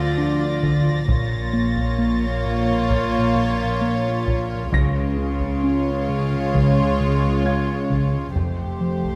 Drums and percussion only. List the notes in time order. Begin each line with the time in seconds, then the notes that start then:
0.63 taiko
1.09 taiko
1.77 taiko
2.90 taiko
4.27 taiko
4.73 taiko
5.40 taiko
6.54 taiko
7.90 taiko
8.36 taiko
9.04 taiko